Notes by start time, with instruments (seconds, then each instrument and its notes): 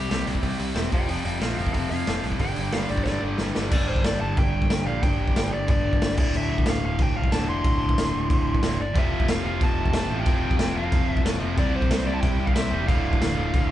Already playing: overdriven electric guitar C3 C4, lead electric guitar G4
0.09 picked electric bass C2, overdriven electric guitar C3 G3 C4, snare, open hi-hat
0.26 picked electric bass C2, overdriven electric guitar C3 G3 C4, open hi-hat
0.35 kick
0.42 picked electric bass C2, overdriven electric guitar C3 G3 C4, kick, open hi-hat
0.58 picked electric bass C2, overdriven electric guitar C3 G3 C4, open hi-hat
0.75 picked electric bass E1, overdriven electric guitar C3 G3 C4, snare, open hi-hat
0.92 picked electric bass F1, overdriven electric guitar F2 C3 F3, lead electric guitar D5 G5, kick, open hi-hat
1.08 picked electric bass F1, overdriven electric guitar F2 C3 F3, lead electric guitar D5 G5, open hi-hat
1.25 picked electric bass F1, overdriven electric guitar F2 C3 F3, lead electric guitar D5 G5, open hi-hat
1.40 picked electric bass A#1, overdriven electric guitar F2 C3 F3, lead electric guitar A4 F5, snare, open hi-hat
1.57 picked electric bass F1, overdriven electric guitar F2 C3 F3, lead electric guitar A4 F5, open hi-hat
1.67 kick
1.73 picked electric bass F1, overdriven electric guitar F2 C3 F3, lead electric guitar A4 F5, kick, open hi-hat
1.90 overdriven electric guitar F2 C3 F3, picked electric bass F2, lead electric guitar F5, open hi-hat
2.07 picked electric bass F1, overdriven electric guitar F2 C3 F3, snare, open hi-hat
2.24 picked electric bass C2, overdriven electric guitar F2 C3 F3, open hi-hat
2.32 kick
2.39 picked electric bass G1, overdriven electric guitar G2 D3 G3, lead electric guitar G5, kick, open hi-hat
2.56 picked electric bass G1, overdriven electric guitar G2 D3 G3, open hi-hat
2.72 picked electric bass G1, overdriven electric guitar G2 D3 G3, lead electric guitar F5, snare, open hi-hat
2.89 picked electric bass G1, overdriven electric guitar G2 D3 G3, lead electric guitar D5, open hi-hat
2.98 kick
3.04 picked electric bass G1, overdriven electric guitar G2 D3 G3, lead electric guitar D5, kick, snare
3.22 picked electric bass G1, overdriven electric guitar G2 D3 G3
3.38 picked electric bass G1, overdriven electric guitar G2 D3 G3, snare
3.55 picked electric bass G1, overdriven electric guitar G2 D3 G3, snare
3.71 picked electric bass G1, overdriven electric guitar G2 D3 G3, lead electric guitar D5, kick, crash
3.89 picked electric bass G1, lead electric guitar C5
3.96 kick
4.04 picked electric bass G1, lead electric guitar D5, snare, crash
4.21 picked electric bass G1, lead electric guitar A5
4.37 picked electric bass G1, lead electric guitar G5, kick, crash
4.53 picked electric bass G1
4.62 kick
4.70 picked electric bass G1, snare, crash
4.86 picked electric bass A#1, overdriven electric guitar G2 D3 G3, lead electric guitar F5
5.03 picked electric bass G1, overdriven electric guitar G2 D3 G3, lead electric guitar G5, kick, crash
5.20 picked electric bass G1
5.28 kick
5.36 picked electric bass G1, snare, crash
5.52 picked electric bass G1, lead electric guitar D5
5.68 picked electric bass G1, lead electric guitar D5, kick, crash
5.85 picked electric bass G1
5.93 kick
6.01 picked electric bass G1, snare, crash
6.17 picked electric bass D1, overdriven electric guitar D2 A2 D3, lead electric guitar D5, kick, crash
6.34 picked electric bass D1, lead electric guitar E5, crash
6.50 picked electric bass D1
6.58 kick
6.66 picked electric bass D1, snare, crash
6.70 lead electric guitar F5
6.84 picked electric bass D1, lead electric guitar F5
6.99 picked electric bass D1, lead electric guitar G5, kick, crash
7.14 picked electric bass D1, lead electric guitar F5
7.24 kick
7.31 picked electric bass D1, overdriven electric guitar D2 A2 D3, lead electric guitar A5, snare, crash
7.47 picked electric bass F1, overdriven electric guitar D2 A2 D3, lead electric guitar C6
7.65 picked electric bass D1, kick, crash
7.81 picked electric bass D1
7.89 kick
7.98 picked electric bass D1, snare, crash
8.15 picked electric bass D1
8.30 picked electric bass D1, kick, crash
8.47 picked electric bass D1
8.55 kick
8.62 picked electric bass D1, overdriven electric guitar D2 A2 D3, snare, crash
8.80 picked electric bass G1, lead electric guitar D5
8.94 picked electric bass F1, overdriven electric guitar F2 C3 F3 A3 C4 F4, kick, crash
8.99 lead electric guitar E5
9.12 picked electric bass F1
9.20 kick
9.28 picked electric bass F1, lead electric guitar F5, snare, crash
9.43 picked electric bass F1, overdriven electric guitar F2 C3 F3 A3 C4 F4
9.47 lead electric guitar F5
9.61 picked electric bass F1, lead electric guitar A5, kick, crash
9.78 picked electric bass F1
9.86 kick
9.92 picked electric bass F1, overdriven electric guitar F2 C3 F3 A3 C4 F4, lead electric guitar A5, snare, crash
10.10 picked electric bass A1, overdriven electric guitar F2 C3 F3
10.19 lead electric guitar G5
10.24 picked electric bass F1, overdriven electric guitar F2 C3 F3 A3 C4 F4, kick, crash
10.43 picked electric bass F1
10.51 kick
10.59 picked electric bass F1, snare, crash
10.74 picked electric bass F1, overdriven electric guitar F2 C3 F3 A3 C4 F4, lead electric guitar F5
10.92 picked electric bass F1, kick, crash
11.09 picked electric bass F1, lead electric guitar E5
11.17 kick
11.23 picked electric bass F1, overdriven electric guitar F2 C3 F3 A3 C4 F4, snare, crash
11.40 picked electric bass F1, overdriven electric guitar F2 C3 F3
11.55 picked electric bass C2, overdriven electric guitar C3 G3 C4 E4 G4 C5, lead electric guitar D5, kick, crash
11.74 picked electric bass C2, lead electric guitar C5
11.82 kick
11.89 picked electric bass C2, snare, crash
12.05 picked electric bass C2, overdriven electric guitar C3 G3 C4 E4 G4 C5, lead electric guitar D5
12.14 lead electric guitar A5
12.21 picked electric bass C2, lead electric guitar G5, kick, crash
12.40 picked electric bass C2
12.46 lead electric guitar F5, kick
12.54 picked electric bass C2, overdriven electric guitar C3 G3 C4 E4 G4 C5, lead electric guitar E5, snare, crash
12.71 picked electric bass E1, overdriven electric guitar C3 G3 C4
12.87 picked electric bass D1, overdriven electric guitar D2 A2 D3 A3 F4, lead electric guitar F5, kick, crash
13.06 picked electric bass D1
13.13 kick
13.22 picked electric bass D1, snare, crash
13.36 picked electric bass D1, overdriven electric guitar D2 A2 D3 A3 F4
13.54 picked electric bass D1, kick, crash